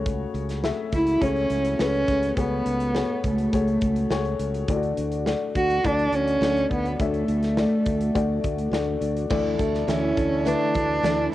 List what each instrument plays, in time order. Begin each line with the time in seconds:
Already playing: fingered electric bass C#2, upright piano C#3 A3 F#4 G#4 C#5
0.06 kick, closed hi-hat
0.34 fingered electric bass C#2, closed hi-hat
0.49 snare, closed hi-hat
0.64 upright piano A3 F#4 G#4 E5, snare
0.92 fingered electric bass C#2, cello E4, kick, closed hi-hat
1.07 closed hi-hat
1.21 fingered electric bass C#2, upright piano A3 F#4 G#4 C#5, cello C#4, kick, closed hi-hat
1.36 closed hi-hat
1.50 fingered electric bass C#2, closed hi-hat
1.65 closed hi-hat
1.79 fingered electric bass C#2, upright piano A3 F#4 G#4 B4, cello C#4, snare
1.94 closed hi-hat
2.08 fingered electric bass C#2, upright piano C#3, kick, closed hi-hat
2.23 closed hi-hat
2.37 fingered electric bass C#2, upright piano A3 F#4 G#4 C#5, cello B3, kick, closed hi-hat
2.66 fingered electric bass C#2, closed hi-hat
2.80 closed hi-hat
2.95 upright piano A3 F#4 G#4 C#5, snare
3.24 fingered electric bass C#2, cello A3, kick, closed hi-hat
3.38 closed hi-hat
3.53 fingered electric bass C#2, upright piano A3 F#4 G#4 C#5, kick, closed hi-hat
3.68 closed hi-hat
3.81 fingered electric bass C#2, kick, closed hi-hat
3.96 closed hi-hat
4.10 fingered electric bass C#2, upright piano A3 F#4 G#4 C#5, snare
4.25 closed hi-hat
4.39 fingered electric bass C#2, closed hi-hat
4.54 closed hi-hat
4.68 fingered electric bass D2, upright piano D3 A3 D4 E4 D5, kick, closed hi-hat
4.76 upright piano F#4
4.83 closed hi-hat
4.97 fingered electric bass D2, closed hi-hat
5.12 closed hi-hat
5.26 upright piano A3 D4 F#4 D5, snare
5.55 fingered electric bass D2, cello F#4, kick, closed hi-hat
5.70 closed hi-hat
5.84 fingered electric bass D2, upright piano A3 D4 F#4 D5, cello D4, kick, closed hi-hat
5.99 closed hi-hat
6.12 fingered electric bass D2, cello C#4, closed hi-hat
6.28 closed hi-hat
6.41 fingered electric bass D2, upright piano A3 D4 F#4 D5, snare
6.57 closed hi-hat
6.71 fingered electric bass D2, cello B3, kick, closed hi-hat
6.85 closed hi-hat
6.99 fingered electric bass D2, upright piano D3 A3 D4 F#4 E5, cello A3, kick, closed hi-hat
7.14 closed hi-hat
7.28 fingered electric bass D2, closed hi-hat
7.43 snare, closed hi-hat
7.57 upright piano A3 D4 F#4 D5, snare
7.86 fingered electric bass D2, kick, closed hi-hat
8.01 closed hi-hat
8.15 fingered electric bass D2, upright piano A3 D4 F#4 D5, kick, closed hi-hat
8.44 fingered electric bass D2, kick, closed hi-hat
8.58 closed hi-hat
8.72 fingered electric bass D2, upright piano A3 D4 F#4 D5, snare
9.01 fingered electric bass D2, closed hi-hat
9.17 closed hi-hat
9.30 fingered electric bass D2, steel-string acoustic guitar D3 E3 A3 E4 A4, upright piano D3 A3 D4 E4 D5, kick, crash
9.58 fingered electric bass D2, steel-string acoustic guitar A3 E4 A4, kick, closed hi-hat
9.74 snare
9.87 fingered electric bass D2, upright piano D3 A3 E4 E5, steel-string acoustic guitar E3 A3 E4 A4, cello C#4, snare, closed hi-hat
10.16 fingered electric bass D2, steel-string acoustic guitar A3 E4 A4, kick, closed hi-hat
10.45 steel-string acoustic guitar D3 E3 A3 E4 A4, upright piano A3 D4 E4 B4, cello D4, closed hi-hat
10.74 fingered electric bass D2, steel-string acoustic guitar A3 E4 A4, kick, closed hi-hat
11.03 fingered electric bass D2, steel-string acoustic guitar E3 A3 E4 A4, upright piano A3 D4 E4 D5, snare, closed hi-hat
11.32 steel-string acoustic guitar A4